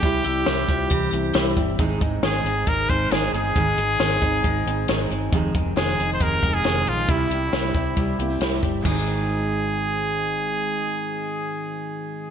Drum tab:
CC |--------|--------|--------|--------|
HH |xxxxxxxx|xxxxxxxx|xxxxxxxx|xxxxxxxx|
SD |--o---o-|--o---o-|--o---o-|--o---o-|
BD |o--oo--o|oo--oo--|o--oo---|oo--oo--|

CC |--------|x-------|--------|
HH |xxxxxxxx|--------|--------|
SD |--o---o-|--------|--------|
BD |o--oo--o|o-------|--------|